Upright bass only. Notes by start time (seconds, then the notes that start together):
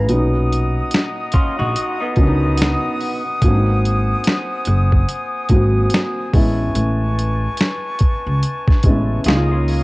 0.09 B1
1.59 A#1
2.17 C#2
3.42 G#1
4.67 F#1
5.50 G#1
6.34 A1
6.75 A1
8.26 C#2
8.84 A1
9.26 C#2